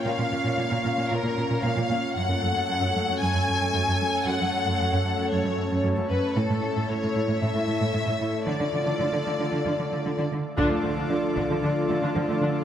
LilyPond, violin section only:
\new Staff \with { instrumentName = "Violin section" } { \time 4/4 \key d \minor \tempo 4 = 114 f''2 bes'4 f''4 | fis''2 gis''2 | fis''2 cis''4 r8 b'8 | a'4 cis''4 e''2 |
d''2.~ d''8 r8 | r1 | }